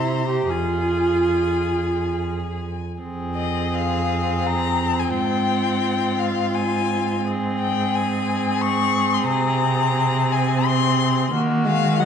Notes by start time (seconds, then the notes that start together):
Already playing: C3 E4 C5 A#5
0.28 G4
0.49 F2 F4 G#4 G#5
3.01 F2 C4 G#4
3.36 D#5
3.74 F5
4.46 A#5
4.99 G#5
5.14 G#2 F4 G5
6.19 F5
6.54 G#5
7.24 C4 G#4
7.60 G5
7.95 G#5
8.62 C#6
9.14 C6
9.28 C3 A#5
10.32 G#5
10.66 C6
11.33 D#3 A#3 F#4
11.66 G#3 F5
11.99 F#3 D#4 F#5